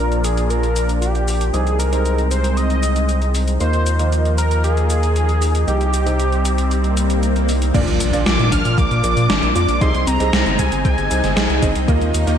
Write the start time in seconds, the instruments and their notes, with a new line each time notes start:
Already playing: analog synth bass A#1, electric grand piano A#2 A#3 D4 F4 A#4 D5, analog synth pad F3 A#3 D4, analog synth lead A#4
0.12 closed hi-hat, cabasa
0.24 analog synth lead G#4, closed hi-hat, cabasa
0.37 closed hi-hat, cabasa
0.50 analog synth lead A#4, closed hi-hat, cabasa
0.63 closed hi-hat, cabasa
0.76 analog synth lead A#4, closed hi-hat, cabasa
0.89 closed hi-hat, cabasa
1.01 analog synth lead G4, closed hi-hat, cabasa
1.15 closed hi-hat, cabasa
1.28 open hi-hat, cabasa
1.41 closed hi-hat, cabasa
1.53 analog synth bass C2, electric grand piano C3 C4 D#4 G#4 C5 D#5, analog synth pad G#3 C4 D#4, analog synth lead G#4, closed hi-hat, cabasa
1.67 closed hi-hat, cabasa
1.79 analog synth lead A#4, closed hi-hat, cabasa
1.93 electric grand piano C3 C4 D#4 G#4 C5 D#5, closed hi-hat, cabasa
2.06 closed hi-hat, cabasa
2.18 closed hi-hat, cabasa
2.31 analog synth lead C5, closed hi-hat, cabasa
2.44 closed hi-hat, cabasa
2.57 analog synth lead D#5, closed hi-hat, cabasa
2.70 closed hi-hat, cabasa
2.83 closed hi-hat, cabasa
2.96 closed hi-hat, cabasa
3.09 closed hi-hat, cabasa
3.22 closed hi-hat, cabasa
3.35 open hi-hat, cabasa
3.48 closed hi-hat, cabasa
3.60 analog synth bass D#2, electric grand piano D#3 A#3 D#4 F4 A#4 D#5, analog synth pad F3 A#3, analog synth lead C5, closed hi-hat, cabasa
3.73 closed hi-hat, cabasa
3.86 closed hi-hat, cabasa
3.99 electric grand piano D#3 A#3 D#4 F4 A#4 D#5, closed hi-hat, cabasa
4.12 closed hi-hat, cabasa
4.25 closed hi-hat, cabasa
4.38 analog synth lead A#4, closed hi-hat, cabasa
4.51 closed hi-hat, cabasa
4.64 analog synth lead G#4, closed hi-hat, cabasa
4.77 closed hi-hat, cabasa
4.90 closed hi-hat, cabasa
5.03 closed hi-hat, cabasa
5.16 closed hi-hat, cabasa
5.29 closed hi-hat, cabasa
5.42 open hi-hat, cabasa
5.55 closed hi-hat, cabasa
5.67 analog synth bass C2, electric grand piano C3 C4 D#4 G4 C5 D#5, analog synth pad G3 C4, analog synth lead G4, closed hi-hat, cabasa
5.81 closed hi-hat, cabasa
5.94 closed hi-hat, cabasa
6.06 electric grand piano C3 C4 D#4 G4 C5 D#5, closed hi-hat, cabasa
6.20 closed hi-hat, cabasa
6.32 closed hi-hat, cabasa
6.45 closed hi-hat, cabasa
6.58 closed hi-hat, cabasa
6.71 closed hi-hat, swell, cabasa
6.84 closed hi-hat, cabasa
6.97 closed hi-hat, cabasa
7.10 closed hi-hat, cabasa
7.23 closed hi-hat, cabasa
7.36 closed hi-hat, cabasa
7.49 open hi-hat, cabasa
7.62 closed hi-hat, cabasa
7.74 analog synth bass A#1, electric grand piano A#2 A#3 D4 F4 A#4 D5, analog synth pad F3 A#3 D4, synth arpeggio sound A#3, kick, closed hi-hat, crash, impact, cabasa
7.88 analog synth bass A#1, closed hi-hat, cabasa
8.00 analog synth bass A#1, synth arpeggio sound D4, closed hi-hat, cabasa
8.13 analog synth bass A#1, electric grand piano A#2 A#3 D4 F4 A#4 D5, closed hi-hat, cabasa
8.26 analog synth bass A#1, synth arpeggio sound F4, analog synth lead D6, snare, closed hi-hat, cabasa
8.39 analog synth bass A#2, closed hi-hat, cabasa
8.52 analog synth bass A#1, synth arpeggio sound D4, analog synth lead F6, kick, closed hi-hat, cabasa
8.65 analog synth bass A#2, closed hi-hat, cabasa
8.78 analog synth bass A#1, synth arpeggio sound A#3, analog synth lead D6, kick, closed hi-hat, cabasa
8.91 analog synth bass A#2, closed hi-hat, cabasa
9.04 analog synth bass A#1, electric grand piano A#2 A#3 D4 F4 A#4 D5, closed hi-hat, cabasa
9.17 analog synth bass A#2, closed hi-hat, cabasa
9.30 analog synth bass G#1, synth arpeggio sound D4, snare, closed hi-hat, cabasa
9.43 analog synth bass A#1, closed hi-hat, cabasa
9.55 analog synth bass F2, electric grand piano A#3 D4 F4 A#4 D5, synth arpeggio sound F4, analog synth lead D6, closed hi-hat, cabasa
9.68 analog synth bass A#1, closed hi-hat, cabasa
9.81 analog synth bass C2, electric grand piano C3 C4 D#4 G#4 C5 D#5, analog synth pad G#3 C4 D#4, synth arpeggio sound D#4, analog synth lead C6, kick, closed hi-hat, cabasa
9.94 analog synth bass C2, closed hi-hat, cabasa
10.07 analog synth bass C2, synth arpeggio sound C4, analog synth lead A#5, closed hi-hat, cabasa
10.20 analog synth bass C2, electric grand piano C3 C4 D#4 G#4 C5 D#5, closed hi-hat, cabasa
10.33 analog synth bass C2, synth arpeggio sound D#4, snare, closed hi-hat, cabasa
10.46 analog synth bass G1, closed hi-hat, cabasa
10.59 analog synth bass C2, analog synth lead G#5, kick, closed hi-hat, cabasa
10.72 analog synth bass G1, closed hi-hat, cabasa
10.85 analog synth bass C2, synth arpeggio sound C4, analog synth lead G#5, kick, closed hi-hat, cabasa
10.98 analog synth bass G1, closed hi-hat, cabasa
11.10 analog synth bass C2, electric grand piano C3 C4 D#4 G#4 C5 D#5, synth arpeggio sound D#4, closed hi-hat, cabasa
11.24 analog synth bass G1, snare, closed hi-hat, cabasa
11.36 analog synth bass A#1, synth arpeggio sound G#4, snare, closed hi-hat, cabasa
11.50 analog synth bass C2, closed hi-hat, cabasa
11.62 analog synth bass G1, electric grand piano C4 D#4 G#4 C5 D#5, synth arpeggio sound D#4, kick, closed hi-hat, cabasa
11.75 analog synth bass C2, closed hi-hat, cabasa
11.88 analog synth bass D#2, electric grand piano D#3 A#3 D#4 F4 A#4 D#5, analog synth pad F3 A#3, synth arpeggio sound A#3, kick, closed hi-hat, cabasa
12.01 analog synth bass D#2, closed hi-hat, cabasa
12.14 analog synth bass D#2, closed hi-hat, cabasa
12.27 analog synth bass D#2, electric grand piano D#3 A#3 D#4 F4 A#4 D#5, closed hi-hat, cabasa